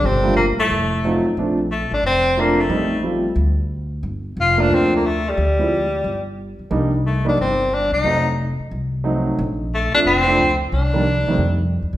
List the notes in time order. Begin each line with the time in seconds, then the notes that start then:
0.03 G1 C3 C4
0.23 G3 A3 A#3 D4 F4
0.35 A#2 A#3
0.58 A2 A3, muted upright bass stroke
0.70 F1
1.05 F#3 A3 C4 D#4 F4
1.25 muted upright bass stroke
1.37 A#1 F3 A3 C4 D4
1.72 A3
1.91 A1 D4
2.03 F1 C4
2.37 F3 A3 A#3 C4 D4
2.60 A3
2.70 A1 G3 A3 C4 D#4
3.03 G3 A3 C4 F4
3.36 D2
4.03 G1
4.37 F1
4.41 F4
4.57 F3 A3 A#3 D4
4.70 D2 C4
4.96 A#3
5.06 A3
5.29 G3
5.37 D2
5.59 F3 G#3 C4 E4
6.04 G1
6.59 muted upright bass stroke
6.70 C2 G3 A#3 D4 D#4
7.07 A3
7.25 G3 A#3 D4 D#4
7.37 G1 C4
7.74 D4
7.92 C2 D#4
8.04 F1 F#3 A3 C4 D#4
8.59 muted upright bass stroke
8.71 C2
9.04 F#3 A3 C4 D#4
9.39 A#1
9.74 A3
9.94 F3 A3 C4 D4, muted upright bass stroke
10.06 F1 C4
10.27 F3 A3 C4 D4
10.39 C#2
10.72 C2 D4
10.93 D#3 G3 A#3 D4
11.26 C3 D#3 G3 A3 C4
11.38 F2
11.82 D#2
11.93 C2